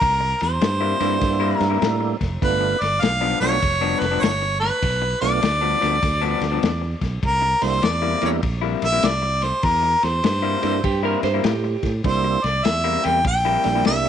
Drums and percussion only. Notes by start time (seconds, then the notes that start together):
0.01 kick, ride
0.41 snare, ride
0.61 snare, ride
1.00 snare, ride
1.21 kick, snare, ride
1.60 snare, ride
1.82 snare, ride
2.21 kick, snare, ride
2.42 kick, ride
2.82 snare, ride
3.02 snare, ride
3.42 snare, ride
3.62 kick, ride
4.01 snare, ride
4.23 snare, ride
4.62 snare, ride
4.82 kick, ride
5.22 snare, ride
5.42 snare, ride
5.82 snare, ride
6.03 kick, snare, ride
6.41 snare, ride
6.63 snare, ride
7.01 kick, snare, ride
7.23 kick, ride
7.62 snare, ride
7.83 snare, ride
8.22 snare, ride
8.43 kick, ride
8.82 snare, ride
9.03 snare, ride
9.42 snare, ride
9.63 kick, ride
10.03 snare, ride
10.24 snare, ride
10.63 snare, ride
10.84 kick, ride
11.23 snare, ride
11.44 snare, ride
11.83 kick, snare, ride
12.04 kick, ride
12.44 snare, ride
12.65 snare, ride
13.04 snare, ride
13.24 kick, ride
13.64 snare, ride
13.85 snare, ride